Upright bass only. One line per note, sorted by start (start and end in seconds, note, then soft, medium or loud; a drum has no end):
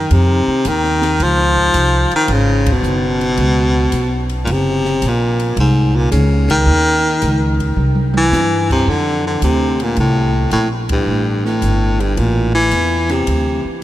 0.11 0.46 F2 medium
0.47 muted upright bass stroke soft
0.65 1.18 D#2 medium
1.20 1.73 C#2 medium
1.74 2.09 C2 medium
2.28 2.82 G#1 medium
2.82 3.36 F#1 medium
3.38 3.91 C#2 medium
3.92 4.46 B1 medium
4.47 5.01 F#1 medium
5.02 5.56 A#1 medium
5.57 6.10 C2 medium
6.12 6.65 C#2 medium
6.66 7.20 D#2 medium
7.22 7.76 C#2 medium
7.76 8.30 C2 medium
8.32 8.85 G2 medium
8.87 9.40 F2 medium
9.42 9.95 D2 medium
9.97 10.50 C2 medium
10.52 11.05 A#1 medium
11.07 11.60 A1 medium
11.62 12.15 G1 medium
12.17 12.71 A1 medium
12.72 13.25 E2 medium
13.27 13.63 D2 medium
13.65 muted upright bass stroke soft